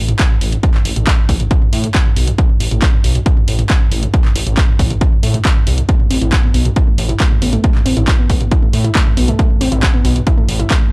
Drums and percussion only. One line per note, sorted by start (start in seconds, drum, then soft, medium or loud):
0.08 closed hi-hat medium
0.08 mid tom medium
0.19 kick loud
0.19 clap loud
0.19 closed hi-hat medium
0.30 mid tom medium
0.41 open hi-hat loud
0.52 closed hi-hat medium
0.52 mid tom medium
0.63 kick loud
0.63 closed hi-hat medium
0.74 clap soft
0.74 mid tom medium
0.85 open hi-hat loud
0.96 closed hi-hat medium
0.96 mid tom medium
1.07 kick loud
1.07 clap loud
1.07 closed hi-hat medium
1.18 mid tom medium
1.29 kick medium
1.29 open hi-hat loud
1.40 closed hi-hat medium
1.40 mid tom medium
1.51 kick loud
1.51 closed hi-hat medium
1.62 mid tom medium
1.73 open hi-hat loud
1.84 closed hi-hat medium
1.84 mid tom medium
1.95 kick loud
1.95 clap loud
1.95 closed hi-hat medium
2.06 mid tom loud
2.16 open hi-hat loud
2.27 closed hi-hat medium
2.27 mid tom medium
2.38 kick loud
2.38 closed hi-hat medium
2.49 mid tom medium
2.60 open hi-hat loud
2.71 closed hi-hat medium
2.71 mid tom loud
2.82 kick loud
2.82 clap loud
2.82 closed hi-hat medium
2.93 mid tom medium
3.04 open hi-hat loud
3.15 closed hi-hat medium
3.15 mid tom medium
3.26 kick loud
3.26 closed hi-hat medium
3.37 mid tom loud
3.48 open hi-hat loud
3.59 closed hi-hat medium
3.59 mid tom loud
3.70 kick loud
3.70 clap loud
3.70 closed hi-hat medium
3.81 mid tom medium
3.92 open hi-hat loud
4.03 closed hi-hat medium
4.03 mid tom medium
4.14 kick loud
4.14 closed hi-hat medium
4.25 clap soft
4.25 mid tom medium
4.36 open hi-hat loud
4.47 closed hi-hat medium
4.47 mid tom medium
4.57 kick loud
4.57 clap loud
4.57 closed hi-hat medium
4.68 mid tom loud
4.79 kick medium
4.79 open hi-hat loud
4.90 closed hi-hat medium
4.90 mid tom loud
5.01 kick loud
5.01 closed hi-hat medium
5.12 mid tom medium
5.23 open hi-hat loud
5.34 closed hi-hat medium
5.34 mid tom loud
5.45 kick loud
5.45 clap loud
5.45 closed hi-hat medium
5.56 mid tom loud
5.67 open hi-hat loud
5.78 closed hi-hat medium
5.78 mid tom medium
5.89 kick loud
5.89 closed hi-hat medium
6.00 mid tom medium
6.11 open hi-hat loud
6.22 closed hi-hat medium
6.22 mid tom medium
6.33 kick loud
6.33 clap loud
6.33 closed hi-hat medium
6.44 mid tom medium
6.54 open hi-hat loud
6.65 closed hi-hat medium
6.65 mid tom loud
6.76 kick loud
6.76 closed hi-hat medium
6.87 mid tom medium
6.98 open hi-hat loud
7.09 closed hi-hat medium
7.09 mid tom loud
7.20 kick loud
7.20 clap loud
7.20 closed hi-hat medium
7.31 mid tom loud
7.42 open hi-hat loud
7.53 closed hi-hat medium
7.53 mid tom medium
7.64 kick loud
7.64 closed hi-hat medium
7.75 clap soft
7.75 mid tom medium
7.86 open hi-hat loud
7.97 closed hi-hat medium
7.97 mid tom loud
8.08 kick loud
8.08 clap loud
8.08 closed hi-hat medium
8.19 mid tom medium
8.30 kick medium
8.30 open hi-hat loud
8.41 closed hi-hat medium
8.41 mid tom medium
8.51 kick loud
8.51 closed hi-hat medium
8.62 mid tom medium
8.73 open hi-hat loud
8.85 closed hi-hat medium
8.85 mid tom medium
8.95 kick loud
8.95 clap loud
8.95 closed hi-hat medium
9.06 mid tom loud
9.17 open hi-hat loud
9.28 closed hi-hat medium
9.28 mid tom medium
9.39 kick loud
9.39 closed hi-hat medium
9.50 mid tom medium
9.61 open hi-hat loud
9.72 closed hi-hat medium
9.72 mid tom medium
9.83 kick loud
9.83 clap loud
9.83 closed hi-hat medium
9.94 mid tom medium
10.05 open hi-hat loud
10.16 closed hi-hat medium
10.16 mid tom medium
10.27 kick loud
10.27 closed hi-hat medium
10.38 mid tom medium
10.49 open hi-hat loud
10.60 closed hi-hat medium
10.60 mid tom medium
10.70 kick loud
10.70 clap loud
10.70 closed hi-hat medium
10.82 mid tom medium